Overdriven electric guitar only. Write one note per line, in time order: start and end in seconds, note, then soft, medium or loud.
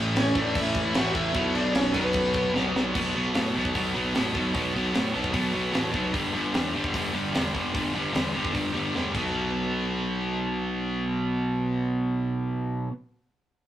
0.17 0.35 C#4 medium
0.17 0.36 C#5 medium
0.37 0.55 D4 medium
0.37 0.55 D5 medium
0.56 0.93 E4 medium
0.56 0.96 E5 loud
0.96 1.14 F#4 medium
0.96 1.13 F#5 loud
1.13 1.51 E4 medium
1.13 1.55 E5 loud
1.55 1.73 D4 medium
1.55 1.73 D5 medium
1.73 1.93 C#4 medium
1.73 1.92 C#5 medium
1.92 2.50 B3 medium
1.92 2.49 B4 medium